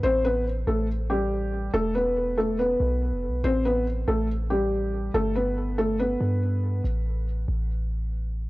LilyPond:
<<
  \new Staff \with { instrumentName = "Felt piano" } { \time 4/4 \key a \minor \tempo 4 = 141 <c' c''>8 <b b'>8 r8 <a a'>8 r8 <g g'>4. | <a a'>8 <b b'>4 <a a'>8 <b b'>2 | <c' c''>8 <b b'>8 r8 <a a'>8 r8 <g g'>4. | <a a'>8 <b b'>4 <a a'>8 <b b'>2 |
r1 | }
  \new Staff \with { instrumentName = "808-style bass" } { \clef bass \time 4/4 \key a \minor a,,4. a,,2~ a,,8 | e,,2~ e,,8 b,,8. f,,16. b,,16. | a,,4. a,,2~ a,,8 | g,,2~ g,,8 g,4. |
a,,4. a,,2~ a,,8 | }
>>